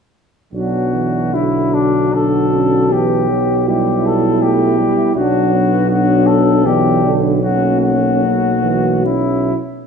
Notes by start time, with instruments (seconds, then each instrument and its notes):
0.53 tuba B1, trombone F#3, euphonium B3, french horn section D4, flugelhorn F#4
0.94 trombone E3
1.33 trombone D3, euphonium D4, flugelhorn E4, french horn section F#4
1.74 flugelhorn D4
2.12 trombone D3, euphonium D4, french horn section F#4, flugelhorn A4
2.51 euphonium C#4
2.88 trombone E3, euphonium B3, french horn section G4
2.92 flugelhorn G4
3.29 trombone F#3
3.68 trombone G3, french horn section E4, flugelhorn G4
4.06 flugelhorn A4
4.42 trombone A3, flugelhorn G4
4.78 trombone G3
5.16 tuba B1, trombone F#3, euphonium D4, french horn section D4, flugelhorn F#4
5.54 french horn section B3
5.89 euphonium D4, flugelhorn F#4
6.27 flugelhorn A4
6.65 trombone E3, euphonium B3, french horn section D4, flugelhorn G4
7.04 trombone D3
7.42 trombone F#3, euphonium A#3, french horn section C#4, flugelhorn F#4
7.80 flugelhorn F#4
8.22 trombone F#3, french horn section F#4
8.63 trombone E3
9.05 trombone F#3, euphonium C#4, flugelhorn E4, french horn section E4